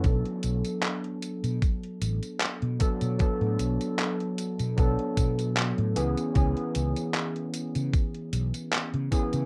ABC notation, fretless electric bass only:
X:1
M:4/4
L:1/16
Q:"Swing 16ths" 1/4=76
K:Bdor
V:1 name="Fretless electric bass" clef=bass
B,,, z B,,, z4 B,, z2 A,,, z2 B,, z B,, | z A,, B,,, z4 B,, B,,, z B,,3 A,, C,, z | C,, z C,, z4 C, z2 B,,, z2 C, z C, |]